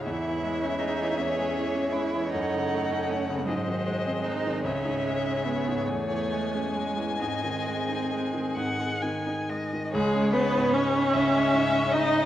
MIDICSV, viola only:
0, 0, Header, 1, 2, 480
1, 0, Start_track
1, 0, Key_signature, 4, "minor"
1, 0, Tempo, 762389
1, 31, Time_signature, 6, 3, 24, 8
1, 2432, Tempo, 798935
1, 3392, Tempo, 867052
1, 4352, Tempo, 910470
1, 5792, Tempo, 797872
1, 7192, End_track
2, 0, Start_track
2, 0, Title_t, "Viola"
2, 0, Program_c, 0, 41
2, 31, Note_on_c, 0, 68, 57
2, 1442, Note_off_c, 0, 68, 0
2, 1465, Note_on_c, 0, 69, 66
2, 2164, Note_off_c, 0, 69, 0
2, 2189, Note_on_c, 0, 68, 58
2, 4329, Note_off_c, 0, 68, 0
2, 4349, Note_on_c, 0, 68, 56
2, 5656, Note_off_c, 0, 68, 0
2, 5791, Note_on_c, 0, 56, 92
2, 6035, Note_on_c, 0, 59, 98
2, 6044, Note_off_c, 0, 56, 0
2, 6281, Note_on_c, 0, 61, 87
2, 6290, Note_off_c, 0, 59, 0
2, 7001, Note_on_c, 0, 63, 100
2, 7010, Note_off_c, 0, 61, 0
2, 7192, Note_off_c, 0, 63, 0
2, 7192, End_track
0, 0, End_of_file